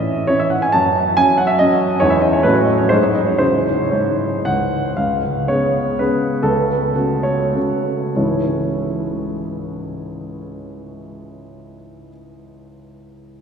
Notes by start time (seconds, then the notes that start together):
Already playing: E3 C#4 D#5
0.27 E3 C#4 C#5
0.39 E5
0.50 F#5
0.62 G#5
0.72 F#2 A5
1.17 F#3 C#4 G#5
1.38 F#5
1.47 E5
1.59 F#3 C#4 D#5
2.00 E2 G#3 C#4 E4 C#5
2.10 E5
2.21 D#5
2.33 C#5
2.43 A2 F#3 C#4 F#4 B4
2.54 C#5
2.65 D#5
2.78 C#5
2.89 G#2 F#3 D#4 G#4 C5
3.03 C#5
3.15 D#5
3.26 C#5
3.38 C#3 E4 G#4 C5
3.91 G#2 C#5
4.45 C#2 F#5
4.97 C#2 F5
5.48 C#3 B3 G#4 C#5
5.99 C#3 B3 G#4 B4
6.43 C#2 A4
6.96 C#3 A3 F#4
7.23 C#5
7.55 C#3 A3 F#4
8.16 C#2 G#2 E3 G#3 C#4 E4 C#5